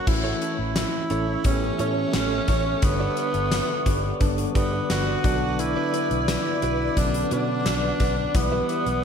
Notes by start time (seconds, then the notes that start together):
0.06 A1 E3 A3 C#4 E4 A4 C#5 E5 C#6, muted clean electric guitar stroke, kick, crash
0.24 C#4 E4 A4 C#5
0.41 C#4 E4 A4 C#5, closed hi-hat
0.58 A1, muted clean electric guitar stroke
0.76 E4, muted clean electric guitar stroke, snare, closed hi-hat, tambourine
0.93 muted clean electric guitar stroke
1.10 A1 C#4 E4 A4 C#5, closed hi-hat
1.27 C#4 E4 A4 C#5
1.44 A1 E3 A3 B3 C#4 G4, muted clean electric guitar stroke, kick, closed hi-hat
1.52 C#4
1.62 muted clean electric guitar stroke
1.79 A2 C#4 E4 A4 C#5, closed hi-hat
1.97 muted clean electric guitar stroke
2.13 A1, snare, closed hi-hat, tambourine
2.31 muted clean electric guitar stroke
2.48 A1 C#4 E4 A4 C#5, kick, closed hi-hat
2.65 muted clean electric guitar stroke
2.82 G1 D3 G3 B3 D4 B4 D5 D6, muted clean electric guitar stroke, kick, closed hi-hat
2.99 D4 G4 B4 D5
3.17 D4 G4 B4 D5, closed hi-hat
3.34 G1, muted clean electric guitar stroke, closed hi-hat
3.52 muted clean electric guitar stroke, snare, closed hi-hat, tambourine
3.69 muted clean electric guitar stroke
3.86 G1 D4 G4 B4 D5, kick, closed hi-hat
4.04 D4 G4 B4 D5
4.20 G1 D3 G3 B3 D4, muted clean electric guitar stroke, kick, closed hi-hat
4.38 muted clean electric guitar stroke, closed hi-hat
4.55 G2 B3 D4 G4 B4 D5, kick, closed hi-hat
4.73 muted clean electric guitar stroke
4.90 G1 F#4, snare, closed hi-hat, tambourine
5.07 muted clean electric guitar stroke
5.24 B1 D3 F#3 B3 D4 F#4 B4 D5 F#5, kick, closed hi-hat
5.41 muted clean electric guitar stroke
5.59 E4, muted clean electric guitar stroke, closed hi-hat
5.76 D4 F#4 B4 D5
5.93 D4 F#4 B4 D5, closed hi-hat
6.10 B1, muted clean electric guitar stroke, closed hi-hat
6.28 E4, muted clean electric guitar stroke, snare, closed hi-hat, tambourine
6.45 muted clean electric guitar stroke
6.62 B1 D4 F#4 B4 D5, closed hi-hat
6.80 D4 F#4 B4 D5
6.96 B1 D3 F#3 B3 C#4 D4, kick, closed hi-hat
7.04 D4
7.14 muted clean electric guitar stroke, closed hi-hat
7.31 B2 D4 F#4 B4 D5, closed hi-hat
7.49 muted clean electric guitar stroke
7.65 B1, snare, closed hi-hat, tambourine
7.83 muted clean electric guitar stroke
8.00 B1 D4 F#4 B4 D5, kick, closed hi-hat
8.18 muted clean electric guitar stroke
8.34 B1 E3 G3 B3 E4 B4 E5 G5 E6, muted clean electric guitar stroke, kick, closed hi-hat
8.52 E4 G4 B4 E5
8.69 E4 G4 B4 E5, closed hi-hat
8.86 B1, muted clean electric guitar stroke, closed hi-hat